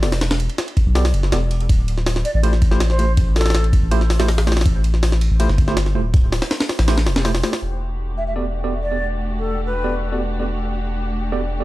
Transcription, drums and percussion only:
0.03 snare, open hi-hat
0.12 snare, open hi-hat
0.21 snare, open hi-hat
0.31 snare, open hi-hat
0.40 ride
0.50 ride
0.58 snare, ride
0.68 ride
0.77 kick, ride
0.95 snare, open hi-hat
1.05 snare, open hi-hat
1.14 ride
1.23 snare
1.32 snare, ride
1.51 ride
1.60 ride
1.69 kick, ride
1.88 ride
1.98 snare
2.06 snare, open hi-hat
2.16 snare
2.25 ride
2.43 ride
2.53 snare
2.62 kick, ride
2.72 snare
2.80 snare, ride
2.90 snare
2.99 ride
3.17 kick, ride
3.36 snare, open hi-hat
3.41 snare, open hi-hat
3.46 snare, open hi-hat
3.50 snare, open hi-hat
3.55 snare, ride
3.64 ride
3.73 kick, ride
3.91 ride
4.01 snare
4.10 snare, open hi-hat
4.20 snare, open hi-hat
4.28 snare, open hi-hat
4.38 snare, open hi-hat
4.47 snare, open hi-hat
4.52 snare, open hi-hat
4.57 snare, open hi-hat
4.61 snare, open hi-hat
4.66 kick, ride
4.84 ride
4.94 snare
5.03 snare, open hi-hat
5.12 snare
5.21 ride
5.40 ride
5.49 snare
5.58 kick, ride
5.68 snare
5.77 snare, ride
5.86 snare
6.14 kick, ride
6.32 snare, open hi-hat
6.42 snare, open hi-hat
6.51 snare, open hi-hat
6.60 snare, open hi-hat
6.69 snare, open hi-hat
6.79 snare, open hi-hat
6.88 snare, open hi-hat
6.98 snare, open hi-hat
7.06 snare, open hi-hat
7.16 snare, open hi-hat
7.25 snare, open hi-hat
7.35 snare, open hi-hat
7.43 snare, open hi-hat
7.53 snare, open hi-hat

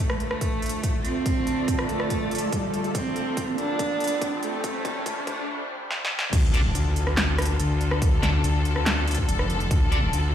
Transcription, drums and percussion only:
0.10 cross-stick
0.20 closed hi-hat
0.31 cross-stick
0.41 kick, closed hi-hat
0.62 closed hi-hat
0.66 closed hi-hat
0.69 closed hi-hat
0.83 kick, closed hi-hat
1.05 closed hi-hat
1.26 kick, closed hi-hat
1.47 closed hi-hat
1.68 kick, closed hi-hat
1.79 cross-stick
1.89 closed hi-hat
2.00 cross-stick
2.10 kick, closed hi-hat
2.31 closed hi-hat
2.35 closed hi-hat
2.38 closed hi-hat
2.52 kick, closed hi-hat
2.74 closed hi-hat
2.84 closed hi-hat
2.95 kick, closed hi-hat
3.16 closed hi-hat
3.37 kick, closed hi-hat
3.58 closed hi-hat
3.79 kick, closed hi-hat
4.00 closed hi-hat
4.04 closed hi-hat
4.07 closed hi-hat
4.22 kick, closed hi-hat
4.43 closed hi-hat
4.64 kick, closed hi-hat
4.85 kick, closed hi-hat
5.06 kick, closed hi-hat
5.27 kick, closed hi-hat
5.91 snare
6.05 snare
6.19 snare
6.33 kick, closed hi-hat, crash
6.54 closed hi-hat
6.75 closed hi-hat
6.96 closed hi-hat
7.07 cross-stick
7.17 snare, clap, closed hi-hat
7.38 cross-stick, closed hi-hat
7.42 closed hi-hat
7.45 closed hi-hat
7.60 closed hi-hat
7.81 closed hi-hat
7.91 cross-stick
8.02 kick, closed hi-hat
8.23 snare, closed hi-hat
8.44 closed hi-hat
8.65 closed hi-hat
8.76 cross-stick
8.86 snare, clap, closed hi-hat
9.07 closed hi-hat
9.11 closed hi-hat
9.15 kick, closed hi-hat
9.29 closed hi-hat
9.39 cross-stick
9.50 closed hi-hat
9.60 closed hi-hat
9.71 kick, closed hi-hat
9.92 closed hi-hat
10.13 closed hi-hat

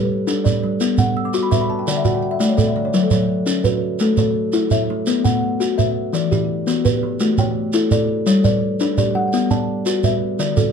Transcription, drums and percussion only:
0.28 shekere
0.46 shekere
0.80 shekere
0.98 shekere
1.34 shekere
1.52 shekere
1.88 shekere
2.05 shekere
2.40 shekere
2.58 shekere
2.94 shekere
3.11 shekere
3.47 shekere
3.64 shekere
3.99 shekere
4.17 shekere
4.53 shekere
4.71 shekere
5.07 shekere
5.25 shekere
5.61 shekere
5.79 shekere
6.14 shekere
6.32 shekere
6.67 shekere
6.85 shekere
7.20 shekere
7.38 shekere
7.73 shekere
7.91 shekere
8.27 shekere
8.44 shekere
8.80 shekere
8.98 shekere
9.33 shekere
9.51 shekere
9.86 shekere
10.04 shekere
10.39 shekere
10.57 shekere

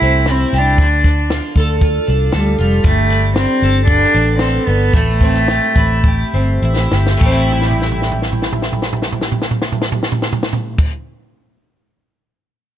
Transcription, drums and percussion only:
0.02 shaker
0.26 snare, shaker
0.52 shaker
0.78 kick, shaker
1.04 kick, shaker
1.30 snare, shaker
1.55 kick, shaker
1.69 shaker
1.81 kick, shaker
2.08 shaker
2.33 snare, shaker
2.59 shaker
2.71 shaker
2.84 kick, shaker
3.10 shaker
3.23 shaker
3.35 snare, shaker
3.62 shaker
3.88 kick, shaker
4.15 shaker
4.27 shaker
4.39 snare, shaker
4.66 shaker
4.80 shaker
4.93 kick, shaker
5.21 kick, shaker
5.34 snare
5.48 snare, shaker
5.75 kick, shaker
6.04 kick
6.76 snare
6.92 snare
7.07 snare
7.21 kick, crash
7.52 floor tom
7.62 snare
7.71 floor tom
7.82 snare
7.92 floor tom
8.02 snare
8.12 floor tom
8.22 snare
8.32 floor tom
8.42 snare
8.53 floor tom
8.62 snare
8.72 floor tom
8.82 snare
8.93 floor tom
9.02 snare
9.12 floor tom
9.21 snare
9.32 floor tom
9.42 snare
9.51 floor tom
9.62 snare
9.72 floor tom
9.82 snare
9.92 floor tom
10.03 snare
10.12 floor tom
10.22 snare
10.33 floor tom
10.43 snare
10.53 floor tom
10.78 kick, crash

